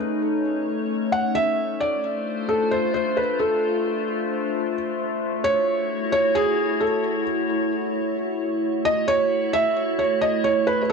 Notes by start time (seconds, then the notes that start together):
Already playing: A3 C#4 D#4 C#5
1.12 F#5
1.35 E5
1.59 A3 D4 F4 C5
1.80 D5
2.49 A4
2.71 C5
2.94 C5
3.17 B4
3.40 A4
5.23 E4 F#4 C#5
5.44 C#5
6.12 C#5
6.35 G#4
6.80 A4
8.85 A3 E4 F#4 C#5 D#5
9.08 C#5
9.53 E5
9.99 C#5
10.21 D#5
10.44 C#5
10.67 B4 G#5
10.83 B4